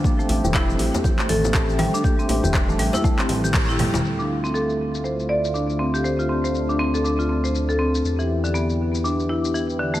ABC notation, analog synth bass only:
X:1
M:4/4
L:1/16
Q:"Swing 16ths" 1/4=120
K:Ddor
V:1 name="Analog synth bass" clef=bass
z2 A,,, E,,,3 A,,, z3 A,,,4- A,,, z | z2 A,,, E,,,3 A,,, z3 A,,,4- A,,, E,,, | D,,16- | D,,16 |
E,,16 |]